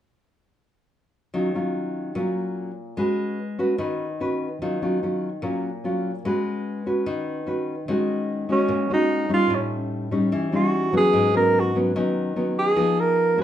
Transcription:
1.34 D#3 F#3 C#4 F4
1.55 F#3 C#4 F4
2.15 A#2 F#3 C#4 F4
2.97 G#3 C#4 F#4 B4
3.59 C#4 F#4 B4
3.78 D#3 C#4 F#4 B4
4.20 C#4 F#4 B4
4.62 D#3 F#3 C#4 F4
4.82 F#3 C#4 F4
5.03 F#3 C#4 F4
5.42 A#2 F#3 C#4 F4
5.84 F#3 C#4 F4
6.25 G#3 C#4 F#4 B4
6.86 C#4 F#4 B4
7.06 D#3
7.46 C#4 F#4 B4
7.88 D#3 G#3 C#4 F#4
8.49 G#3 C#4 F#4
8.68 A#2
8.90 G#3 C#4 D#4 F#4
9.29 G3 C#4 D#4
9.34 F4
9.50 A2
9.55 C#4
10.11 G3 C#4 D#4
10.32 E3
10.52 G3 C#4 D#4 F#4
10.93 F#3 B3 C#4
10.97 G#4
11.13 G#2
11.34 F#3 B3 C#4 A#4
11.60 F#4
11.75 F#3 B3 C#4
11.95 D#3 F#3 B3 C#4
12.36 F#3 B3 C#4
12.59 G#4
12.76 F3 B3 D#4 G#4
13.00 A#4
13.37 D4 F#4 G#4

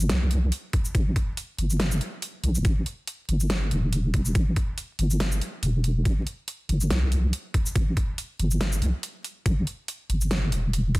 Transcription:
Already playing: G1
0.09 C2, snare, closed hi-hat
0.31 closed hi-hat
0.52 closed hi-hat
0.73 kick, closed hi-hat
0.85 shaker
0.95 A1, kick, closed hi-hat
1.16 kick, closed hi-hat
1.37 closed hi-hat
1.58 G1, closed hi-hat
1.70 shaker
1.80 snare, closed hi-hat
1.91 shaker
2.01 closed hi-hat
2.22 closed hi-hat
2.43 B1, closed hi-hat
2.55 E1, shaker
2.65 A1, kick, closed hi-hat
2.86 closed hi-hat
3.07 closed hi-hat
3.29 G1, closed hi-hat
3.40 shaker
3.50 snare, closed hi-hat
3.71 E1, closed hi-hat
3.93 closed hi-hat
4.14 kick, closed hi-hat
4.25 shaker
4.35 A1, kick, closed hi-hat
4.56 kick, closed hi-hat
4.78 closed hi-hat
4.99 G1, closed hi-hat
5.11 shaker
5.20 snare, closed hi-hat
5.32 shaker
5.41 closed hi-hat
5.63 E1, closed hi-hat
5.84 closed hi-hat
6.05 A1, kick, closed hi-hat
6.27 closed hi-hat
6.48 closed hi-hat
6.69 G1, closed hi-hat
6.81 shaker
6.90 C2, snare, closed hi-hat
7.12 closed hi-hat
7.33 closed hi-hat
7.54 kick, closed hi-hat
7.66 shaker
7.75 A1, kick, closed hi-hat
7.97 kick, closed hi-hat
8.18 closed hi-hat
8.39 G1, closed hi-hat
8.51 shaker
8.61 snare, closed hi-hat
8.72 shaker
8.82 C2, closed hi-hat
9.03 closed hi-hat
9.24 closed hi-hat
9.46 A1, kick, closed hi-hat
9.67 closed hi-hat
9.88 closed hi-hat
10.09 G1, closed hi-hat
10.21 shaker
10.31 snare, closed hi-hat
10.52 E1, closed hi-hat
10.73 closed hi-hat
10.95 kick, closed hi-hat

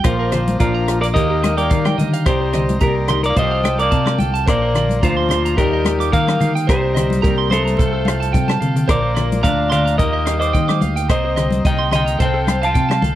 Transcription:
0.04 A#1 A#2 F3 F4 A#4 C5 D5 A#5 C6, muted clean electric guitar stroke, kick, cross-stick, closed hi-hat
0.19 A#4
0.32 F3 C5, cross-stick, closed hi-hat, low conga
0.47 closed hi-hat, high conga
0.60 A#1 F3 D4 F4 A#4 D5, kick, closed hi-hat
0.74 A#5
0.88 F4, cross-stick, closed hi-hat
1.01 A#3 A#4 D5, closed hi-hat
1.14 D#2 D#3 A#3 G4 A#4 D#5 F5, kick, closed hi-hat
1.18 G5 A#5
1.30 G4
1.42 G3 D#5, cross-stick, closed hi-hat, high conga
1.57 A#3 A#4 D5 G5, closed hi-hat
1.70 D#3 F5, kick, closed hi-hat
1.85 G5, cross-stick, high conga
1.97 D3 D#3 D#5, closed hi-hat, high conga, low conga
2.13 F5, closed hi-hat
2.26 C2 C3 G3 G4 A#4 C5 D#5 A#5 C6, kick, cross-stick, closed hi-hat
2.41 C5
2.53 G3 D#5, cross-stick, closed hi-hat, low conga
2.69 closed hi-hat, high conga
2.80 C2 A#3 G4 A#4 A#5, kick, closed hi-hat
2.86 G3
3.08 D#4 C6, cross-stick, closed hi-hat, low conga
3.23 A#4 D5, muted clean electric guitar stroke, closed hi-hat
3.29 A#3
3.36 C2 C3 F3 C4 G4 C5 D#5 F5 G5 A5, kick, closed hi-hat
3.43 C4
3.51 F5
3.63 F3 G5, cross-stick, closed hi-hat, high conga
3.79 A#3 A#4 D5 D6, closed hi-hat
3.91 C3 C4 A5, kick, closed hi-hat
4.06 D6, cross-stick, high conga
4.19 C2 A4 G5, closed hi-hat, high conga, low conga
4.34 A5, closed hi-hat
4.46 A#1 A#2 A#3 A#4 C5 D5 A#5 C6, kick, cross-stick, closed hi-hat
4.62 C5
4.75 F3 D5, cross-stick, closed hi-hat, low conga
4.89 closed hi-hat, high conga
5.03 D2 F3 D4 F4 C5 A#5, kick, closed hi-hat
5.17 C6
5.29 F4 C6, cross-stick, closed hi-hat, low conga
5.45 A#5, closed hi-hat
5.57 D#2 D#3 G3 A#3 F4 G4 A#4 D#5 F5 G5 D#6, kick, closed hi-hat
5.73 D#5
5.85 G3, cross-stick, closed hi-hat, high conga
6.00 D6, closed hi-hat
6.12 D#3 A#3 A#4 F5, kick, closed hi-hat
6.28 muted clean electric guitar stroke, cross-stick, high conga
6.40 D#3 F5, muted clean electric guitar stroke, closed hi-hat, high conga, low conga
6.55 G5, closed hi-hat
6.67 C2 C3 G3 G4 A#4 C5 D#5 A#5 C6, kick, cross-stick, closed hi-hat
6.82 C5
6.94 G3 D#5, cross-stick, closed hi-hat, low conga
7.10 closed hi-hat, high conga
7.22 C2 G3 A#3 G4 A#4 A#5, kick, closed hi-hat
7.38 C6
7.50 A3 A4 A#4 C5 C6, cross-stick, closed hi-hat, high conga
7.65 A#5, closed hi-hat
7.77 C2 C3 A4 F5 G5 A5, kick, closed hi-hat, low conga
7.81 A4
7.93 A4
8.05 F3 F5, cross-stick, closed hi-hat, high conga
8.20 A5, closed hi-hat
8.33 C3 C4 G5, kick, closed hi-hat, high conga
8.48 A5, cross-stick, high conga
8.60 C3 A4 F5, closed hi-hat, low conga
8.76 closed hi-hat, low conga
8.88 A#1 A#2 A#4 C5 D5 A#5 C6, kick, cross-stick, closed hi-hat
8.93 A#3
9.02 C5
9.15 F3 D5, cross-stick, closed hi-hat, low conga
9.32 closed hi-hat, high conga
9.43 D2 D4 D5 F5 A#5, kick, closed hi-hat
9.47 D4
9.70 C5 D5 F5 C6, cross-stick, closed hi-hat, low conga
9.74 D4
9.85 A#5, closed hi-hat
9.98 D#2 D#3 G4 A#4 D#5 F5 G5 D#6, kick, closed hi-hat
10.02 A#3
10.13 D#5
10.26 G3 F5, cross-stick, closed hi-hat
10.40 C5 D#5 D6, closed hi-hat
10.45 C4
10.53 D#3 A#3 G5, kick, closed hi-hat
10.68 D6, cross-stick, high conga
10.81 D2 F5, muted clean electric guitar stroke, closed hi-hat, high conga, low conga
10.96 G5, closed hi-hat
11.08 C2 C3 A#4 C5 D#5 A#5 C6, kick, cross-stick, closed hi-hat
11.14 C4
11.25 C5
11.36 G3 D#5, cross-stick, closed hi-hat, low conga
11.51 closed hi-hat, high conga
11.65 C2 A#3 D#4 D#5 G5, kick, closed hi-hat
11.79 C6
11.91 A#4 D#5 C6, cross-stick, closed hi-hat, low conga
11.96 D#4 G5
12.06 A#5, closed hi-hat
12.19 C2 C3 A4 C5 F5 G5 A5, kick, closed hi-hat
12.25 C4
12.34 A4
12.47 F5, cross-stick, closed hi-hat, high conga
12.62 F5 A5, closed hi-hat
12.66 F4
12.74 C3 C4 G5, kick, closed hi-hat
12.89 A5, cross-stick, high conga
13.02 C2 A4 F5, closed hi-hat, high conga, low conga

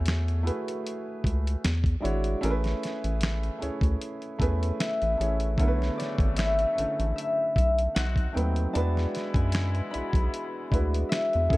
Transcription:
Already playing: E2 A3 E4 F#4 G#4 C#5
0.06 finger snap, snare, closed hi-hat
0.28 closed hi-hat
0.43 A3 E4 F#4 G#4 B4
0.47 closed hi-hat
0.68 closed hi-hat
0.87 closed hi-hat
1.24 C#2, kick, closed hi-hat
1.47 closed hi-hat
1.64 E2, finger snap, snare, closed hi-hat
1.84 kick, closed hi-hat
2.00 G#3 D4 E4 F#4 C#5
2.05 G#1, closed hi-hat
2.24 closed hi-hat
2.41 A1 A3 C#4 E4 G#4 A#4, closed hi-hat
2.51 B4
2.64 snare, closed hi-hat
2.83 snare, closed hi-hat
3.04 A1, closed hi-hat
3.21 finger snap, snare, closed hi-hat
3.43 closed hi-hat
3.59 A3 C#4 E4 G#4 C#5, closed hi-hat
3.63 D2
3.81 D2, kick, closed hi-hat
4.01 closed hi-hat
4.22 closed hi-hat
4.39 E2 A3 C#4 E4 G#4 B4, kick, closed hi-hat
4.63 closed hi-hat
4.80 E5, finger snap, snare, closed hi-hat
5.02 A1, closed hi-hat
5.17 A1 A3 C#4 E4 G#4 C#5, closed hi-hat
5.40 closed hi-hat
5.58 B1 C#3 D3 F#3 A3 B3 E4 A#4 C#5, kick, closed hi-hat
5.68 B4
5.82 snare
5.98 D5, snare, closed hi-hat
6.18 G#1, kick, closed hi-hat
6.37 E5, finger snap, snare, closed hi-hat
6.59 closed hi-hat
6.75 A1 D3 A3 C#4 E4 A4, closed hi-hat
7.00 A1, closed hi-hat
7.16 E5, closed hi-hat
7.56 B1 E5, kick, closed hi-hat
7.79 closed hi-hat
7.95 B1 C4 D#4 F#4 F#5, finger snap, snare, closed hi-hat
8.16 kick, closed hi-hat
8.33 D#2 F#3 A3 C4 D#4 B4 G5
8.37 closed hi-hat
8.56 closed hi-hat
8.73 E2 G#3 B3 D4 E4 F#4 B4 A5, closed hi-hat
8.97 snare
9.15 snare, closed hi-hat
9.34 F#2 G#5, kick, closed hi-hat
9.52 finger snap, snare, closed hi-hat
9.75 closed hi-hat
9.91 G#3 D4 E4 F#4 D5 B5, closed hi-hat
9.95 B1
10.13 B1, kick, closed hi-hat
10.34 closed hi-hat
10.71 D2 G#3 D4 E4 F#4 B4, kick, closed hi-hat
10.94 closed hi-hat
11.09 E5, finger snap, snare, closed hi-hat
11.33 E2, closed hi-hat
11.49 F#2 C#4 E4 F#4 G#4 A4, kick, closed hi-hat

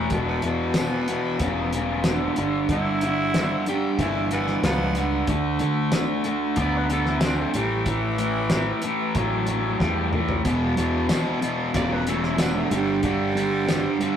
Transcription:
Already playing: D4
0.10 E1 E2 B2, kick, closed hi-hat
0.28 B3
0.42 E2 B2, closed hi-hat
0.47 B3
0.74 E2 B2, snare, closed hi-hat, tambourine
1.08 E2 B2, closed hi-hat
1.40 E1 E2 C#3, kick, closed hi-hat
1.73 E2 C#3, closed hi-hat
2.04 E2 D3, snare, closed hi-hat, tambourine
2.36 G1 G2 D3, closed hi-hat
2.69 G2 D3 E4, kick, closed hi-hat
3.01 G2 D3, closed hi-hat
3.34 G2 D3, snare, closed hi-hat, tambourine
3.66 G2 D3 G4, closed hi-hat
3.98 G1 G2 E3 E4, kick, closed hi-hat
4.31 G2 E3 B3, closed hi-hat
4.47 snare
4.63 C#2 G2 F3 B3, kick, snare, closed hi-hat, tambourine
4.95 G2 D3, closed hi-hat
5.27 D2 D3 A3, kick, closed hi-hat
5.59 D3 A3, closed hi-hat
5.92 D3 A3, snare, closed hi-hat, tambourine
6.24 D3 A3, closed hi-hat
6.56 D2 D3 B3, kick, closed hi-hat
6.61 D5
6.77 B4
6.90 D3 B3 A4, closed hi-hat
7.06 E4, snare
7.20 D3 C4, snare, closed hi-hat, tambourine
7.26 D4
7.41 A3
7.54 A1 A2 E3 G3, closed hi-hat
7.86 A2 E3, kick, closed hi-hat
8.18 A2 E3, closed hi-hat
8.50 A2 E3, snare, closed hi-hat, tambourine
8.82 A2 E3, closed hi-hat
9.15 A1 A2 F#3, kick, closed hi-hat
9.47 A2 F#3, closed hi-hat
9.80 E2 A2 G3, kick, snare
10.12 A2 E3, mid tom
10.29 floor tom
10.44 E1 E2 B2, kick, closed hi-hat
10.77 E2 B2, closed hi-hat
11.08 E2 B2, snare, closed hi-hat, tambourine
11.41 E2 B2, closed hi-hat
11.73 E1 E2 C#3 D5, kick, closed hi-hat
11.93 B4
12.07 E2 C#3 A4, closed hi-hat
12.23 E4, snare
12.38 E2 D3 D4, snare, closed hi-hat, tambourine
12.58 A3
12.71 G1 G2 D3, closed hi-hat
12.75 G3
13.03 G2 D3 G3, kick, closed hi-hat
13.35 G2 D3, closed hi-hat
13.68 G2 D3, snare, closed hi-hat, tambourine
14.00 G2 D3, closed hi-hat

